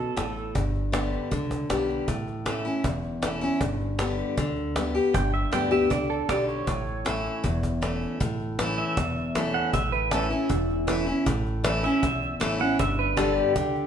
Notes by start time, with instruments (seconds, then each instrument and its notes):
Already playing: upright bass B1, steel-string acoustic guitar B2, pedal steel guitar A4
0.17 upright bass A1, steel-string acoustic guitar A2, cajon slap
0.37 cajon slap
0.55 upright bass G1, steel-string acoustic guitar G2, cajon bass
0.75 cajon slap
0.92 steel-string acoustic guitar D3 G3 B3 G4, cajon slap
1.13 cajon slap
1.31 upright bass C#2, steel-string acoustic guitar D3, cajon bass
1.51 cajon bass
1.69 upright bass B1, steel-string acoustic guitar D3 G3 B3 G4, cajon slap
1.89 cajon slap
2.08 upright bass A1, steel-string acoustic guitar A2, cajon bass
2.27 cajon slap
2.46 steel-string acoustic guitar E3 A3 C#4 E4, cajon slap
2.65 steel-string acoustic guitar C#4 E4, cajon slap
2.84 upright bass E1, steel-string acoustic guitar E2, cajon bass
3.03 cajon slap
3.22 steel-string acoustic guitar E3 A3 C#4 E4, cajon slap
3.41 steel-string acoustic guitar C#4 E4, cajon slap
3.61 upright bass G1, steel-string acoustic guitar G2, cajon bass
3.80 cajon slap
3.98 steel-string acoustic guitar D3 G3 B3 G4, cajon slap
4.18 cajon slap
4.37 upright bass D2, steel-string acoustic guitar D3, cajon bass
4.57 cajon slap
4.75 steel-string acoustic guitar D3 G3 B3 G4, cajon slap
4.95 steel-string acoustic guitar B3 G4, cajon slap
5.14 upright bass G1, steel-string acoustic guitar G2, pedal steel guitar G5, cajon bass
5.34 pedal steel guitar E5, cajon slap
5.52 upright bass D2, steel-string acoustic guitar D3 G3 B3 G4, pedal steel guitar G5, cajon slap
5.71 steel-string acoustic guitar B3 G4, pedal steel guitar E5, cajon slap
5.90 upright bass C#2, steel-string acoustic guitar D3, pedal steel guitar D5, cajon bass
6.10 pedal steel guitar A4, cajon slap
6.29 upright bass B1, steel-string acoustic guitar D3 G3 B3 G4, pedal steel guitar D5, cajon slap
6.49 pedal steel guitar C#5, cajon slap
6.67 upright bass A1, steel-string acoustic guitar A2, cajon bass
6.87 cajon slap
7.05 steel-string acoustic guitar E3 A3 C#4 E4, cajon slap
7.25 cajon slap
7.44 upright bass E1, steel-string acoustic guitar E2, cajon bass
7.63 cajon bass
7.81 steel-string acoustic guitar E3 A3 C#4 E4, cajon slap
8.02 cajon slap
8.20 upright bass A1, steel-string acoustic guitar A2, cajon bass
8.40 cajon slap
8.59 steel-string acoustic guitar E3 A3 C#4 E4, cajon slap
8.78 pedal steel guitar E5, cajon slap
8.97 upright bass E1, steel-string acoustic guitar E2, cajon bass
9.16 cajon slap
9.35 steel-string acoustic guitar E3 A3 C#4 E4, cajon slap
9.54 pedal steel guitar F#5, cajon slap
9.73 upright bass A1, steel-string acoustic guitar A2, pedal steel guitar E5, cajon bass
9.92 pedal steel guitar B4, cajon slap
10.11 steel-string acoustic guitar E3 A3 C#4 E4, pedal steel guitar A4, cajon slap
10.30 steel-string acoustic guitar C#4 E4, pedal steel guitar E4, cajon slap
10.49 upright bass E1, steel-string acoustic guitar E2, cajon bass
10.69 cajon slap
10.87 steel-string acoustic guitar E3 A3 C#4 E4, cajon slap
11.06 steel-string acoustic guitar C#4 E4, cajon slap
11.26 upright bass A1, steel-string acoustic guitar A2, cajon bass
11.46 cajon slap
11.64 steel-string acoustic guitar E3 A3 C#4 E4, cajon slap
11.83 steel-string acoustic guitar C#4 E4, pedal steel guitar E5, cajon slap
12.03 upright bass B1, steel-string acoustic guitar E2, cajon bass
12.22 cajon slap
12.40 upright bass A1, steel-string acoustic guitar E3 A3 C#4 E4, cajon slap
12.59 steel-string acoustic guitar C#4 E4, pedal steel guitar F#5, cajon slap
12.79 upright bass G1, steel-string acoustic guitar G2, pedal steel guitar E5, cajon bass
12.99 pedal steel guitar B4, cajon slap
13.17 steel-string acoustic guitar D3 G3 B3 G4, pedal steel guitar A4, cajon slap
13.37 pedal steel guitar G4, cajon slap
13.56 upright bass C#2, steel-string acoustic guitar D3, cajon bass
13.75 cajon slap